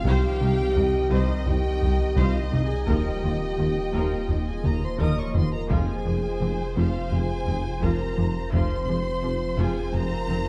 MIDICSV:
0, 0, Header, 1, 13, 480
1, 0, Start_track
1, 0, Key_signature, -4, "minor"
1, 0, Tempo, 705882
1, 38, Time_signature, 4, 2, 24, 8
1, 7130, End_track
2, 0, Start_track
2, 0, Title_t, "Violin section"
2, 0, Program_c, 0, 48
2, 44, Note_on_c, 0, 79, 89
2, 761, Note_off_c, 0, 79, 0
2, 766, Note_on_c, 0, 75, 76
2, 997, Note_off_c, 0, 75, 0
2, 1002, Note_on_c, 0, 79, 86
2, 1480, Note_off_c, 0, 79, 0
2, 1482, Note_on_c, 0, 77, 75
2, 1637, Note_off_c, 0, 77, 0
2, 1643, Note_on_c, 0, 75, 64
2, 1797, Note_off_c, 0, 75, 0
2, 1805, Note_on_c, 0, 80, 62
2, 1959, Note_off_c, 0, 80, 0
2, 1968, Note_on_c, 0, 79, 61
2, 3021, Note_off_c, 0, 79, 0
2, 3049, Note_on_c, 0, 80, 60
2, 3163, Note_off_c, 0, 80, 0
2, 3169, Note_on_c, 0, 82, 61
2, 3284, Note_off_c, 0, 82, 0
2, 3291, Note_on_c, 0, 84, 65
2, 3404, Note_off_c, 0, 84, 0
2, 3408, Note_on_c, 0, 87, 66
2, 3521, Note_off_c, 0, 87, 0
2, 3528, Note_on_c, 0, 85, 61
2, 3643, Note_off_c, 0, 85, 0
2, 3654, Note_on_c, 0, 84, 66
2, 3764, Note_off_c, 0, 84, 0
2, 3767, Note_on_c, 0, 82, 62
2, 3880, Note_off_c, 0, 82, 0
2, 3885, Note_on_c, 0, 80, 65
2, 4587, Note_off_c, 0, 80, 0
2, 4613, Note_on_c, 0, 77, 63
2, 4845, Note_off_c, 0, 77, 0
2, 4856, Note_on_c, 0, 80, 77
2, 5327, Note_off_c, 0, 80, 0
2, 5335, Note_on_c, 0, 82, 72
2, 5807, Note_off_c, 0, 82, 0
2, 5808, Note_on_c, 0, 84, 79
2, 6508, Note_off_c, 0, 84, 0
2, 6528, Note_on_c, 0, 80, 74
2, 6763, Note_off_c, 0, 80, 0
2, 6763, Note_on_c, 0, 82, 92
2, 7130, Note_off_c, 0, 82, 0
2, 7130, End_track
3, 0, Start_track
3, 0, Title_t, "Violin section"
3, 0, Program_c, 1, 48
3, 0, Note_on_c, 1, 77, 81
3, 491, Note_off_c, 1, 77, 0
3, 521, Note_on_c, 1, 75, 73
3, 3744, Note_off_c, 1, 75, 0
3, 3884, Note_on_c, 1, 72, 67
3, 5774, Note_off_c, 1, 72, 0
3, 5805, Note_on_c, 1, 72, 62
3, 7130, Note_off_c, 1, 72, 0
3, 7130, End_track
4, 0, Start_track
4, 0, Title_t, "French horn section"
4, 0, Program_c, 2, 60
4, 29, Note_on_c, 2, 67, 106
4, 739, Note_off_c, 2, 67, 0
4, 754, Note_on_c, 2, 63, 89
4, 995, Note_on_c, 2, 67, 91
4, 996, Note_off_c, 2, 63, 0
4, 1476, Note_off_c, 2, 67, 0
4, 1486, Note_on_c, 2, 65, 85
4, 1642, Note_off_c, 2, 65, 0
4, 1645, Note_on_c, 2, 63, 71
4, 1796, Note_on_c, 2, 68, 81
4, 1801, Note_off_c, 2, 63, 0
4, 1949, Note_on_c, 2, 67, 76
4, 1957, Note_off_c, 2, 68, 0
4, 2925, Note_off_c, 2, 67, 0
4, 3041, Note_on_c, 2, 68, 69
4, 3153, Note_on_c, 2, 70, 76
4, 3157, Note_off_c, 2, 68, 0
4, 3275, Note_off_c, 2, 70, 0
4, 3289, Note_on_c, 2, 72, 71
4, 3401, Note_off_c, 2, 72, 0
4, 3404, Note_on_c, 2, 75, 75
4, 3521, Note_off_c, 2, 75, 0
4, 3532, Note_on_c, 2, 73, 69
4, 3638, Note_on_c, 2, 72, 78
4, 3645, Note_off_c, 2, 73, 0
4, 3758, Note_off_c, 2, 72, 0
4, 3767, Note_on_c, 2, 70, 69
4, 3879, Note_on_c, 2, 68, 86
4, 3883, Note_off_c, 2, 70, 0
4, 4595, Note_on_c, 2, 65, 70
4, 4598, Note_off_c, 2, 68, 0
4, 4837, Note_off_c, 2, 65, 0
4, 4838, Note_on_c, 2, 68, 82
4, 5318, Note_off_c, 2, 68, 0
4, 5318, Note_on_c, 2, 70, 84
4, 5798, Note_off_c, 2, 70, 0
4, 5798, Note_on_c, 2, 72, 89
4, 6503, Note_off_c, 2, 72, 0
4, 6523, Note_on_c, 2, 68, 79
4, 6756, Note_off_c, 2, 68, 0
4, 6763, Note_on_c, 2, 70, 92
4, 7122, Note_off_c, 2, 70, 0
4, 7130, End_track
5, 0, Start_track
5, 0, Title_t, "Ambient pad"
5, 0, Program_c, 3, 92
5, 0, Note_on_c, 3, 60, 81
5, 40, Note_on_c, 3, 55, 78
5, 40, Note_on_c, 3, 75, 77
5, 42, Note_on_c, 3, 63, 79
5, 1931, Note_off_c, 3, 60, 0
5, 1959, Note_off_c, 3, 55, 0
5, 1960, Note_off_c, 3, 63, 0
5, 1962, Note_on_c, 3, 58, 81
5, 1964, Note_on_c, 3, 65, 75
5, 1966, Note_on_c, 3, 53, 72
5, 3865, Note_off_c, 3, 53, 0
5, 3869, Note_off_c, 3, 65, 0
5, 3873, Note_on_c, 3, 53, 70
5, 3877, Note_on_c, 3, 65, 73
5, 3878, Note_on_c, 3, 60, 69
5, 3879, Note_off_c, 3, 75, 0
5, 3879, Note_on_c, 3, 72, 71
5, 3880, Note_off_c, 3, 58, 0
5, 5768, Note_off_c, 3, 53, 0
5, 5770, Note_off_c, 3, 65, 0
5, 5798, Note_off_c, 3, 60, 0
5, 5799, Note_off_c, 3, 72, 0
5, 5808, Note_on_c, 3, 65, 75
5, 5810, Note_on_c, 3, 53, 73
5, 5810, Note_on_c, 3, 72, 76
5, 5811, Note_on_c, 3, 60, 78
5, 7130, Note_off_c, 3, 53, 0
5, 7130, Note_off_c, 3, 60, 0
5, 7130, Note_off_c, 3, 65, 0
5, 7130, Note_off_c, 3, 72, 0
5, 7130, End_track
6, 0, Start_track
6, 0, Title_t, "Viola section"
6, 0, Program_c, 4, 48
6, 39, Note_on_c, 4, 55, 79
6, 42, Note_on_c, 4, 72, 89
6, 262, Note_off_c, 4, 55, 0
6, 263, Note_off_c, 4, 72, 0
6, 281, Note_on_c, 4, 55, 62
6, 281, Note_on_c, 4, 63, 55
6, 335, Note_off_c, 4, 55, 0
6, 336, Note_off_c, 4, 63, 0
6, 522, Note_on_c, 4, 55, 55
6, 522, Note_on_c, 4, 67, 52
6, 576, Note_off_c, 4, 67, 0
6, 577, Note_off_c, 4, 55, 0
6, 759, Note_on_c, 4, 72, 72
6, 760, Note_on_c, 4, 55, 78
6, 982, Note_off_c, 4, 55, 0
6, 982, Note_off_c, 4, 72, 0
6, 999, Note_on_c, 4, 55, 52
6, 999, Note_on_c, 4, 63, 46
6, 1054, Note_off_c, 4, 55, 0
6, 1054, Note_off_c, 4, 63, 0
6, 1242, Note_on_c, 4, 67, 55
6, 1243, Note_on_c, 4, 55, 58
6, 1297, Note_off_c, 4, 55, 0
6, 1297, Note_off_c, 4, 67, 0
6, 1476, Note_on_c, 4, 55, 64
6, 1479, Note_on_c, 4, 72, 73
6, 1700, Note_off_c, 4, 55, 0
6, 1702, Note_off_c, 4, 72, 0
6, 1713, Note_on_c, 4, 55, 54
6, 1714, Note_on_c, 4, 63, 53
6, 1767, Note_off_c, 4, 55, 0
6, 1768, Note_off_c, 4, 63, 0
6, 1958, Note_on_c, 4, 70, 66
6, 1961, Note_on_c, 4, 53, 70
6, 2181, Note_off_c, 4, 70, 0
6, 2183, Note_off_c, 4, 53, 0
6, 2200, Note_on_c, 4, 65, 49
6, 2202, Note_on_c, 4, 53, 45
6, 2255, Note_off_c, 4, 65, 0
6, 2257, Note_off_c, 4, 53, 0
6, 2441, Note_on_c, 4, 67, 41
6, 2443, Note_on_c, 4, 53, 46
6, 2495, Note_off_c, 4, 67, 0
6, 2497, Note_off_c, 4, 53, 0
6, 2674, Note_on_c, 4, 70, 62
6, 2675, Note_on_c, 4, 53, 66
6, 2899, Note_off_c, 4, 70, 0
6, 2900, Note_off_c, 4, 53, 0
6, 2913, Note_on_c, 4, 53, 37
6, 2916, Note_on_c, 4, 65, 40
6, 2967, Note_off_c, 4, 53, 0
6, 2970, Note_off_c, 4, 65, 0
6, 3147, Note_on_c, 4, 53, 52
6, 3149, Note_on_c, 4, 67, 56
6, 3202, Note_off_c, 4, 53, 0
6, 3204, Note_off_c, 4, 67, 0
6, 3385, Note_on_c, 4, 53, 64
6, 3389, Note_on_c, 4, 70, 62
6, 3614, Note_off_c, 4, 53, 0
6, 3616, Note_off_c, 4, 70, 0
6, 3621, Note_on_c, 4, 65, 49
6, 3623, Note_on_c, 4, 53, 43
6, 3675, Note_off_c, 4, 65, 0
6, 3677, Note_off_c, 4, 53, 0
6, 3863, Note_on_c, 4, 53, 70
6, 3868, Note_on_c, 4, 65, 76
6, 4093, Note_off_c, 4, 53, 0
6, 4096, Note_off_c, 4, 65, 0
6, 4106, Note_on_c, 4, 53, 44
6, 4107, Note_on_c, 4, 56, 45
6, 4161, Note_off_c, 4, 53, 0
6, 4161, Note_off_c, 4, 56, 0
6, 4346, Note_on_c, 4, 53, 41
6, 4348, Note_on_c, 4, 60, 49
6, 4400, Note_off_c, 4, 53, 0
6, 4403, Note_off_c, 4, 60, 0
6, 4586, Note_on_c, 4, 53, 61
6, 4588, Note_on_c, 4, 65, 58
6, 4815, Note_off_c, 4, 53, 0
6, 4816, Note_off_c, 4, 65, 0
6, 4829, Note_on_c, 4, 53, 45
6, 4829, Note_on_c, 4, 56, 50
6, 4883, Note_off_c, 4, 53, 0
6, 4883, Note_off_c, 4, 56, 0
6, 5075, Note_on_c, 4, 53, 46
6, 5077, Note_on_c, 4, 60, 55
6, 5130, Note_off_c, 4, 53, 0
6, 5131, Note_off_c, 4, 60, 0
6, 5312, Note_on_c, 4, 53, 60
6, 5312, Note_on_c, 4, 65, 70
6, 5535, Note_off_c, 4, 53, 0
6, 5538, Note_off_c, 4, 65, 0
6, 5543, Note_on_c, 4, 53, 48
6, 5547, Note_on_c, 4, 56, 42
6, 5598, Note_off_c, 4, 53, 0
6, 5601, Note_off_c, 4, 56, 0
6, 5786, Note_on_c, 4, 53, 70
6, 5790, Note_on_c, 4, 65, 67
6, 6015, Note_off_c, 4, 53, 0
6, 6017, Note_off_c, 4, 65, 0
6, 6032, Note_on_c, 4, 53, 49
6, 6036, Note_on_c, 4, 56, 51
6, 6086, Note_off_c, 4, 53, 0
6, 6090, Note_off_c, 4, 56, 0
6, 6272, Note_on_c, 4, 53, 50
6, 6272, Note_on_c, 4, 60, 48
6, 6326, Note_off_c, 4, 53, 0
6, 6326, Note_off_c, 4, 60, 0
6, 6512, Note_on_c, 4, 65, 71
6, 6513, Note_on_c, 4, 53, 68
6, 6738, Note_off_c, 4, 53, 0
6, 6738, Note_off_c, 4, 65, 0
6, 6746, Note_on_c, 4, 53, 50
6, 6747, Note_on_c, 4, 56, 44
6, 6800, Note_off_c, 4, 53, 0
6, 6802, Note_off_c, 4, 56, 0
6, 6991, Note_on_c, 4, 53, 60
6, 6992, Note_on_c, 4, 60, 64
6, 7046, Note_off_c, 4, 53, 0
6, 7047, Note_off_c, 4, 60, 0
6, 7130, End_track
7, 0, Start_track
7, 0, Title_t, "Trombone section"
7, 0, Program_c, 5, 61
7, 0, Note_on_c, 5, 48, 67
7, 40, Note_on_c, 5, 51, 75
7, 1847, Note_off_c, 5, 48, 0
7, 1847, Note_off_c, 5, 51, 0
7, 1962, Note_on_c, 5, 46, 59
7, 1966, Note_on_c, 5, 53, 56
7, 3635, Note_off_c, 5, 46, 0
7, 3637, Note_off_c, 5, 53, 0
7, 3884, Note_on_c, 5, 48, 55
7, 3887, Note_on_c, 5, 53, 56
7, 5774, Note_off_c, 5, 48, 0
7, 5775, Note_off_c, 5, 53, 0
7, 5801, Note_on_c, 5, 53, 64
7, 5804, Note_on_c, 5, 48, 60
7, 7130, Note_off_c, 5, 48, 0
7, 7130, Note_off_c, 5, 53, 0
7, 7130, End_track
8, 0, Start_track
8, 0, Title_t, "Analog synth bass"
8, 0, Program_c, 6, 38
8, 37, Note_on_c, 6, 36, 96
8, 181, Note_off_c, 6, 36, 0
8, 282, Note_on_c, 6, 48, 61
8, 424, Note_off_c, 6, 48, 0
8, 521, Note_on_c, 6, 48, 65
8, 664, Note_off_c, 6, 48, 0
8, 760, Note_on_c, 6, 36, 85
8, 903, Note_off_c, 6, 36, 0
8, 1002, Note_on_c, 6, 36, 66
8, 1145, Note_off_c, 6, 36, 0
8, 1241, Note_on_c, 6, 36, 62
8, 1384, Note_off_c, 6, 36, 0
8, 1480, Note_on_c, 6, 36, 90
8, 1624, Note_off_c, 6, 36, 0
8, 1723, Note_on_c, 6, 48, 63
8, 1866, Note_off_c, 6, 48, 0
8, 1964, Note_on_c, 6, 39, 83
8, 2106, Note_off_c, 6, 39, 0
8, 2205, Note_on_c, 6, 51, 63
8, 2347, Note_off_c, 6, 51, 0
8, 2444, Note_on_c, 6, 51, 61
8, 2586, Note_off_c, 6, 51, 0
8, 2681, Note_on_c, 6, 39, 78
8, 2824, Note_off_c, 6, 39, 0
8, 2924, Note_on_c, 6, 39, 60
8, 3066, Note_off_c, 6, 39, 0
8, 3163, Note_on_c, 6, 39, 58
8, 3306, Note_off_c, 6, 39, 0
8, 3406, Note_on_c, 6, 39, 74
8, 3547, Note_off_c, 6, 39, 0
8, 3647, Note_on_c, 6, 51, 57
8, 3788, Note_off_c, 6, 51, 0
8, 3885, Note_on_c, 6, 41, 80
8, 4027, Note_off_c, 6, 41, 0
8, 4125, Note_on_c, 6, 53, 55
8, 4267, Note_off_c, 6, 53, 0
8, 4367, Note_on_c, 6, 53, 66
8, 4508, Note_off_c, 6, 53, 0
8, 4604, Note_on_c, 6, 41, 88
8, 4747, Note_off_c, 6, 41, 0
8, 4845, Note_on_c, 6, 41, 57
8, 4987, Note_off_c, 6, 41, 0
8, 5084, Note_on_c, 6, 41, 58
8, 5226, Note_off_c, 6, 41, 0
8, 5319, Note_on_c, 6, 41, 82
8, 5463, Note_off_c, 6, 41, 0
8, 5561, Note_on_c, 6, 53, 57
8, 5704, Note_off_c, 6, 53, 0
8, 5805, Note_on_c, 6, 41, 72
8, 5947, Note_off_c, 6, 41, 0
8, 6045, Note_on_c, 6, 53, 57
8, 6187, Note_off_c, 6, 53, 0
8, 6281, Note_on_c, 6, 53, 68
8, 6424, Note_off_c, 6, 53, 0
8, 6522, Note_on_c, 6, 41, 80
8, 6665, Note_off_c, 6, 41, 0
8, 6762, Note_on_c, 6, 41, 61
8, 6905, Note_off_c, 6, 41, 0
8, 7006, Note_on_c, 6, 41, 68
8, 7130, Note_off_c, 6, 41, 0
8, 7130, End_track
9, 0, Start_track
9, 0, Title_t, "Cello section"
9, 0, Program_c, 7, 48
9, 32, Note_on_c, 7, 36, 89
9, 87, Note_off_c, 7, 36, 0
9, 275, Note_on_c, 7, 36, 54
9, 329, Note_off_c, 7, 36, 0
9, 517, Note_on_c, 7, 36, 62
9, 571, Note_off_c, 7, 36, 0
9, 759, Note_on_c, 7, 36, 75
9, 814, Note_off_c, 7, 36, 0
9, 993, Note_on_c, 7, 36, 54
9, 1048, Note_off_c, 7, 36, 0
9, 1234, Note_on_c, 7, 36, 57
9, 1288, Note_off_c, 7, 36, 0
9, 1473, Note_on_c, 7, 36, 81
9, 1527, Note_off_c, 7, 36, 0
9, 1715, Note_on_c, 7, 36, 42
9, 1770, Note_off_c, 7, 36, 0
9, 1954, Note_on_c, 7, 39, 76
9, 2009, Note_off_c, 7, 39, 0
9, 2197, Note_on_c, 7, 39, 40
9, 2252, Note_off_c, 7, 39, 0
9, 2437, Note_on_c, 7, 39, 45
9, 2491, Note_off_c, 7, 39, 0
9, 2677, Note_on_c, 7, 39, 58
9, 2732, Note_off_c, 7, 39, 0
9, 2919, Note_on_c, 7, 39, 46
9, 2973, Note_off_c, 7, 39, 0
9, 3163, Note_on_c, 7, 39, 46
9, 3218, Note_off_c, 7, 39, 0
9, 3399, Note_on_c, 7, 39, 63
9, 3454, Note_off_c, 7, 39, 0
9, 3641, Note_on_c, 7, 39, 41
9, 3695, Note_off_c, 7, 39, 0
9, 3879, Note_on_c, 7, 41, 72
9, 3934, Note_off_c, 7, 41, 0
9, 4124, Note_on_c, 7, 41, 47
9, 4178, Note_off_c, 7, 41, 0
9, 4357, Note_on_c, 7, 41, 44
9, 4412, Note_off_c, 7, 41, 0
9, 4598, Note_on_c, 7, 41, 69
9, 4652, Note_off_c, 7, 41, 0
9, 4835, Note_on_c, 7, 41, 49
9, 4890, Note_off_c, 7, 41, 0
9, 5078, Note_on_c, 7, 41, 48
9, 5132, Note_off_c, 7, 41, 0
9, 5321, Note_on_c, 7, 41, 78
9, 5375, Note_off_c, 7, 41, 0
9, 5563, Note_on_c, 7, 41, 48
9, 5617, Note_off_c, 7, 41, 0
9, 5792, Note_on_c, 7, 41, 72
9, 5847, Note_off_c, 7, 41, 0
9, 6039, Note_on_c, 7, 41, 47
9, 6093, Note_off_c, 7, 41, 0
9, 6277, Note_on_c, 7, 41, 52
9, 6331, Note_off_c, 7, 41, 0
9, 6517, Note_on_c, 7, 41, 75
9, 6571, Note_off_c, 7, 41, 0
9, 6758, Note_on_c, 7, 41, 49
9, 6812, Note_off_c, 7, 41, 0
9, 6999, Note_on_c, 7, 41, 56
9, 7054, Note_off_c, 7, 41, 0
9, 7130, End_track
10, 0, Start_track
10, 0, Title_t, "Double bass section"
10, 0, Program_c, 8, 48
10, 34, Note_on_c, 8, 36, 84
10, 89, Note_off_c, 8, 36, 0
10, 272, Note_on_c, 8, 36, 64
10, 327, Note_off_c, 8, 36, 0
10, 516, Note_on_c, 8, 36, 56
10, 571, Note_off_c, 8, 36, 0
10, 755, Note_on_c, 8, 36, 88
10, 809, Note_off_c, 8, 36, 0
10, 995, Note_on_c, 8, 36, 43
10, 1049, Note_off_c, 8, 36, 0
10, 1239, Note_on_c, 8, 36, 55
10, 1294, Note_off_c, 8, 36, 0
10, 1478, Note_on_c, 8, 36, 80
10, 1532, Note_off_c, 8, 36, 0
10, 1717, Note_on_c, 8, 36, 49
10, 1772, Note_off_c, 8, 36, 0
10, 1959, Note_on_c, 8, 39, 64
10, 2013, Note_off_c, 8, 39, 0
10, 2201, Note_on_c, 8, 39, 50
10, 2255, Note_off_c, 8, 39, 0
10, 2439, Note_on_c, 8, 39, 44
10, 2494, Note_off_c, 8, 39, 0
10, 2682, Note_on_c, 8, 39, 71
10, 2736, Note_off_c, 8, 39, 0
10, 2925, Note_on_c, 8, 39, 41
10, 2979, Note_off_c, 8, 39, 0
10, 3163, Note_on_c, 8, 39, 46
10, 3218, Note_off_c, 8, 39, 0
10, 3406, Note_on_c, 8, 39, 64
10, 3461, Note_off_c, 8, 39, 0
10, 3646, Note_on_c, 8, 39, 43
10, 3700, Note_off_c, 8, 39, 0
10, 3882, Note_on_c, 8, 29, 65
10, 3937, Note_off_c, 8, 29, 0
10, 4123, Note_on_c, 8, 29, 48
10, 4178, Note_off_c, 8, 29, 0
10, 4362, Note_on_c, 8, 29, 51
10, 4416, Note_off_c, 8, 29, 0
10, 4600, Note_on_c, 8, 29, 71
10, 4654, Note_off_c, 8, 29, 0
10, 4839, Note_on_c, 8, 29, 39
10, 4894, Note_off_c, 8, 29, 0
10, 5081, Note_on_c, 8, 29, 53
10, 5135, Note_off_c, 8, 29, 0
10, 5320, Note_on_c, 8, 29, 64
10, 5374, Note_off_c, 8, 29, 0
10, 5559, Note_on_c, 8, 29, 49
10, 5613, Note_off_c, 8, 29, 0
10, 5802, Note_on_c, 8, 29, 68
10, 5856, Note_off_c, 8, 29, 0
10, 6038, Note_on_c, 8, 29, 56
10, 6093, Note_off_c, 8, 29, 0
10, 6278, Note_on_c, 8, 29, 49
10, 6332, Note_off_c, 8, 29, 0
10, 6517, Note_on_c, 8, 29, 83
10, 6571, Note_off_c, 8, 29, 0
10, 6757, Note_on_c, 8, 29, 44
10, 6811, Note_off_c, 8, 29, 0
10, 7000, Note_on_c, 8, 29, 58
10, 7055, Note_off_c, 8, 29, 0
10, 7130, End_track
11, 0, Start_track
11, 0, Title_t, "Tuba"
11, 0, Program_c, 10, 58
11, 42, Note_on_c, 10, 36, 77
11, 137, Note_off_c, 10, 36, 0
11, 282, Note_on_c, 10, 36, 59
11, 377, Note_off_c, 10, 36, 0
11, 523, Note_on_c, 10, 36, 54
11, 618, Note_off_c, 10, 36, 0
11, 756, Note_on_c, 10, 36, 77
11, 853, Note_off_c, 10, 36, 0
11, 1005, Note_on_c, 10, 36, 59
11, 1099, Note_off_c, 10, 36, 0
11, 1242, Note_on_c, 10, 36, 52
11, 1337, Note_off_c, 10, 36, 0
11, 1477, Note_on_c, 10, 36, 62
11, 1573, Note_off_c, 10, 36, 0
11, 1718, Note_on_c, 10, 36, 44
11, 1814, Note_off_c, 10, 36, 0
11, 1961, Note_on_c, 10, 39, 58
11, 2057, Note_off_c, 10, 39, 0
11, 2200, Note_on_c, 10, 39, 47
11, 2295, Note_off_c, 10, 39, 0
11, 2447, Note_on_c, 10, 39, 44
11, 2541, Note_off_c, 10, 39, 0
11, 2688, Note_on_c, 10, 39, 63
11, 2782, Note_off_c, 10, 39, 0
11, 2922, Note_on_c, 10, 39, 45
11, 3017, Note_off_c, 10, 39, 0
11, 3163, Note_on_c, 10, 39, 49
11, 3258, Note_off_c, 10, 39, 0
11, 3405, Note_on_c, 10, 39, 49
11, 3499, Note_off_c, 10, 39, 0
11, 3646, Note_on_c, 10, 39, 45
11, 3741, Note_off_c, 10, 39, 0
11, 3887, Note_on_c, 10, 29, 68
11, 3981, Note_off_c, 10, 29, 0
11, 4121, Note_on_c, 10, 29, 47
11, 4216, Note_off_c, 10, 29, 0
11, 4368, Note_on_c, 10, 29, 48
11, 4462, Note_off_c, 10, 29, 0
11, 4606, Note_on_c, 10, 29, 59
11, 4700, Note_off_c, 10, 29, 0
11, 4847, Note_on_c, 10, 29, 50
11, 4941, Note_off_c, 10, 29, 0
11, 5087, Note_on_c, 10, 29, 51
11, 5181, Note_off_c, 10, 29, 0
11, 5323, Note_on_c, 10, 29, 59
11, 5418, Note_off_c, 10, 29, 0
11, 5562, Note_on_c, 10, 29, 49
11, 5657, Note_off_c, 10, 29, 0
11, 5803, Note_on_c, 10, 29, 59
11, 5898, Note_off_c, 10, 29, 0
11, 6045, Note_on_c, 10, 29, 51
11, 6139, Note_off_c, 10, 29, 0
11, 6281, Note_on_c, 10, 29, 47
11, 6377, Note_off_c, 10, 29, 0
11, 6523, Note_on_c, 10, 29, 63
11, 6618, Note_off_c, 10, 29, 0
11, 6765, Note_on_c, 10, 29, 59
11, 6860, Note_off_c, 10, 29, 0
11, 7010, Note_on_c, 10, 29, 59
11, 7104, Note_off_c, 10, 29, 0
11, 7130, End_track
12, 0, Start_track
12, 0, Title_t, "Sub bass"
12, 0, Program_c, 11, 38
12, 37, Note_on_c, 11, 36, 62
12, 1961, Note_on_c, 11, 27, 68
12, 1971, Note_off_c, 11, 36, 0
12, 3878, Note_on_c, 11, 29, 63
12, 3888, Note_off_c, 11, 27, 0
12, 5796, Note_off_c, 11, 29, 0
12, 5800, Note_on_c, 11, 29, 64
12, 7130, Note_off_c, 11, 29, 0
12, 7130, End_track
13, 0, Start_track
13, 0, Title_t, "Taiko and cinematic ensemble drums"
13, 34, Note_on_c, 9, 41, 97
13, 102, Note_off_c, 9, 41, 0
13, 516, Note_on_c, 9, 43, 50
13, 584, Note_off_c, 9, 43, 0
13, 994, Note_on_c, 9, 43, 52
13, 1062, Note_off_c, 9, 43, 0
13, 1237, Note_on_c, 9, 43, 50
13, 1305, Note_off_c, 9, 43, 0
13, 1471, Note_on_c, 9, 41, 79
13, 1539, Note_off_c, 9, 41, 0
13, 1716, Note_on_c, 9, 43, 47
13, 1784, Note_off_c, 9, 43, 0
13, 1953, Note_on_c, 9, 41, 93
13, 2021, Note_off_c, 9, 41, 0
13, 2438, Note_on_c, 9, 43, 51
13, 2506, Note_off_c, 9, 43, 0
13, 2916, Note_on_c, 9, 43, 48
13, 2984, Note_off_c, 9, 43, 0
13, 3153, Note_on_c, 9, 47, 78
13, 3221, Note_off_c, 9, 47, 0
13, 3391, Note_on_c, 9, 47, 75
13, 3459, Note_off_c, 9, 47, 0
13, 3635, Note_on_c, 9, 43, 85
13, 3703, Note_off_c, 9, 43, 0
13, 3875, Note_on_c, 9, 41, 94
13, 3943, Note_off_c, 9, 41, 0
13, 4356, Note_on_c, 9, 43, 46
13, 4424, Note_off_c, 9, 43, 0
13, 4840, Note_on_c, 9, 43, 53
13, 4908, Note_off_c, 9, 43, 0
13, 5083, Note_on_c, 9, 43, 50
13, 5151, Note_off_c, 9, 43, 0
13, 5323, Note_on_c, 9, 41, 74
13, 5391, Note_off_c, 9, 41, 0
13, 5564, Note_on_c, 9, 43, 46
13, 5632, Note_off_c, 9, 43, 0
13, 5801, Note_on_c, 9, 41, 82
13, 5869, Note_off_c, 9, 41, 0
13, 7130, End_track
0, 0, End_of_file